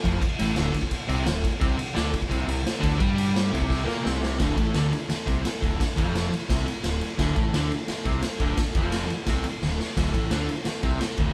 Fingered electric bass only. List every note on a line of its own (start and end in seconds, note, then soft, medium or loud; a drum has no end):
0.05 0.20 F1 medium
0.22 muted fingered electric bass stroke soft
0.41 0.56 A1 medium
0.56 0.72 D1 medium
0.74 muted fingered electric bass stroke soft
1.09 1.25 C2 loud
1.26 1.42 D1 medium
1.62 1.78 C2 loud
1.80 muted fingered electric bass stroke soft
1.97 2.12 D2 loud
2.14 muted fingered electric bass stroke soft
2.31 2.46 C2 loud
2.47 2.64 C2 medium
2.83 2.99 D2 loud
3.01 3.49 G2 loud
3.53 3.85 C2 medium
3.88 4.04 A#2 loud
4.06 4.38 C2 medium
4.40 4.56 D1 medium
4.58 4.74 A1 medium
4.75 4.91 D2 medium
4.92 muted fingered electric bass stroke soft
5.12 muted fingered electric bass stroke soft
5.27 5.43 C2 loud
5.46 muted fingered electric bass stroke soft
5.63 5.79 D1 medium
5.80 muted fingered electric bass stroke soft
5.97 6.29 F1 medium
6.33 muted fingered electric bass stroke soft
6.51 6.66 C2 medium
6.66 muted fingered electric bass stroke soft
6.84 7.00 D1 medium
7.20 7.35 D1 medium
7.37 7.52 A1 medium
7.54 7.70 D2 loud
7.71 muted fingered electric bass stroke soft
7.88 muted fingered electric bass stroke soft
8.06 8.22 C2 medium
8.24 muted fingered electric bass stroke soft
8.40 8.56 D1 medium
8.58 muted fingered electric bass stroke soft
8.76 9.08 F1 medium
9.09 muted fingered electric bass stroke soft
9.27 9.43 C2 medium
9.44 muted fingered electric bass stroke soft
9.61 9.78 D1 medium
9.97 10.13 D1 medium
10.14 10.30 A1 medium
10.31 10.47 D2 loud
10.49 muted fingered electric bass stroke soft
10.65 muted fingered electric bass stroke soft
10.83 11.00 C2 loud
11.01 muted fingered electric bass stroke soft
11.18 11.33 D1 medium